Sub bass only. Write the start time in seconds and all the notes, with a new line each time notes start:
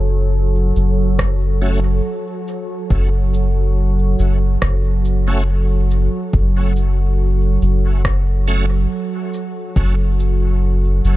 Already playing: F#1
0.76 F#1
2.90 F#1
4.19 F#1
4.62 F#1
6.34 F#1
7.62 F#1
9.76 F#1
11.04 F#1